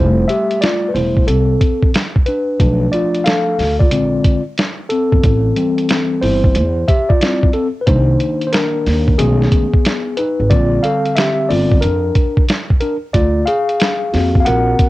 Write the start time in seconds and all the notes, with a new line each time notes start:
Already playing: F1 G3 A3 E4 C5
0.28 G4 E5, closed hi-hat
0.51 closed hi-hat
0.61 F4 D5, snare, closed hi-hat
0.89 B4
0.94 E1 G3 A3 E4 C5, open hi-hat
1.17 kick
1.27 C2 C4 A4, closed hi-hat
1.61 kick, closed hi-hat
1.82 kick
1.94 snare, closed hi-hat
2.16 kick
2.26 D4 B4, closed hi-hat
2.60 B1 F3 A3 D4, kick, closed hi-hat
2.92 F4 D5, closed hi-hat
3.15 closed hi-hat
3.24 A4 F5, snare, closed hi-hat
3.59 D2, snare, open hi-hat
3.79 F4 D5, kick
3.91 A#1 D3 G#3 C4, closed hi-hat
4.24 kick, closed hi-hat
4.58 snare, closed hi-hat
4.89 C4 A4, closed hi-hat
5.12 G1, kick
5.23 A1, kick, closed hi-hat
5.56 E3 G3 C4, closed hi-hat
5.78 closed hi-hat
5.89 snare, closed hi-hat
6.22 G1 E4 C5, open hi-hat
6.44 kick
6.55 E2, closed hi-hat
6.88 G4 E5, kick, closed hi-hat
7.09 F4 D5, kick
7.21 G3 C4 E4, snare, closed hi-hat
7.43 kick
7.53 C4 A4, closed hi-hat
7.81 B4
7.87 C2 D#3 A#3 D4 D#4 C5, kick, closed hi-hat
8.20 closed hi-hat
8.41 closed hi-hat
8.47 C5
8.53 D4 A#4, snare, closed hi-hat
8.86 D#2, snare, open hi-hat
9.08 kick
9.18 B1 D#3 G#3 A3 B3 C#4 G#4, closed hi-hat
9.42 snare
9.52 kick, closed hi-hat
9.73 kick
9.85 snare, closed hi-hat
10.17 D#4 B4, closed hi-hat
10.40 G#1
10.50 A#1 D3 G3 C4 F4 D5, kick, closed hi-hat
10.83 A4 F5, closed hi-hat
11.05 closed hi-hat
11.15 G4 E5, snare, closed hi-hat
11.48 G1 D3 G3 C4 F4 D5, open hi-hat
11.72 kick
11.81 F2 D4 A#4, closed hi-hat
12.15 kick, closed hi-hat
12.37 kick
12.49 snare, closed hi-hat
12.70 kick
12.80 D4 A#4, closed hi-hat
13.13 D2 F4 D5, kick, closed hi-hat
13.46 G#4 F5, closed hi-hat
13.69 closed hi-hat
13.80 snare, closed hi-hat
14.13 F2 A#3 C4 F#4, snare, open hi-hat
14.35 kick
14.40 F5
14.45 A#1 A#4 F#5, closed hi-hat
14.79 kick, closed hi-hat